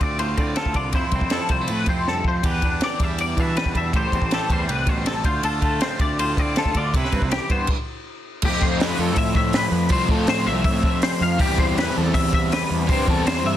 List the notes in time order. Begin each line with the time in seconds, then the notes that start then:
Already playing: D3 A3 C4 F4
0.00 D2 D5, kick, ride
0.19 A2 F4 C5, ride
0.37 D3 C4 D5, kick, ride
0.56 F4 A4, snare, ride
0.66 D2, kick
0.74 C2 D3 F4 D5, kick, ride
0.93 F2 E4 C5, kick, ride
1.11 C2, kick, ride
1.15 C4
1.21 F2, kick
1.30 F3 E4 A4, snare, ride
1.49 C2 G3 C5, kick, ride
1.61 A3
1.68 A2 B4, ride
1.86 F2 C3 C4 C5, kick, ride
2.07 G2 A4, snare
2.24 F2 C5, kick
2.43 E2 G4 B4, kick, ride
2.62 E2 D4, kick, ride
2.81 E3 G4 D5, snare, ride
3.00 E2 G3 E5, kick, ride
3.19 D5, ride
3.37 B2 E3 D4 E5, kick, ride
3.57 G3 B4, snare, ride
3.66 E2, kick
3.75 E2 D4 E5, kick, ride
3.93 A1 A2 G4 C5, kick, ride
4.12 E2 C4, kick, ride
4.22 A1, kick
4.31 E3 G4 A4, snare, ride
4.49 E2 G3 C5, kick, ride
4.69 C2 B4, ride
4.87 A1 B2 C5, kick, ride
5.06 C3 A4, snare, ride
5.24 D2 D3 F4 C5, kick, ride
5.43 D2 F4 A4, ride
5.61 D2 A3 F4, kick, ride
5.81 C4 C5, snare, ride
5.99 D2 D5, kick, ride
6.19 A2 F4 C5, ride
6.37 D3 C4 D5, kick, ride
6.56 F4 A4, snare, ride
6.65 D2, kick
6.74 D2 D3 D5, kick, ride
6.79 F4
6.93 C2 C3 E4 B4, kick, ride
7.05 snare
7.12 G2 C4, kick, ride
7.22 C2, kick
7.31 E3 G4, snare, ride
7.50 G2 B3 C5, kick, ride
7.67 kick, crash
8.42 F2 F3 A3 G4, kick, crash
8.46 C4 F4
8.62 C5, kick
8.80 B4, snare, open hi-hat
8.99 F2 A4
9.16 A2 E5, kick, open hi-hat
9.35 E5, kick
9.53 B4, snare, open hi-hat
9.72 F2
9.89 C2 F3 A3 C4 C5, kick, open hi-hat
9.94 F4
10.09 A2 A4, kick
10.27 C5, snare, open hi-hat
10.46 C2 E5
10.64 A2 E5, kick, open hi-hat
10.83 kick
11.02 C5, snare, open hi-hat
11.21 F2 F5
11.38 E2 E3 G3 C4 G4, kick, open hi-hat
11.58 C5, kick
11.78 B4, snare, open hi-hat
11.97 E2 A4
12.14 E2 E5, kick, open hi-hat
12.33 E5, kick
12.52 B4, snare, open hi-hat
12.71 E2
12.87 G2 E3 G3 C4 C5, kick, open hi-hat
12.91 G4
13.07 E2 A4, kick
13.27 C5, snare, open hi-hat
13.45 G2 E5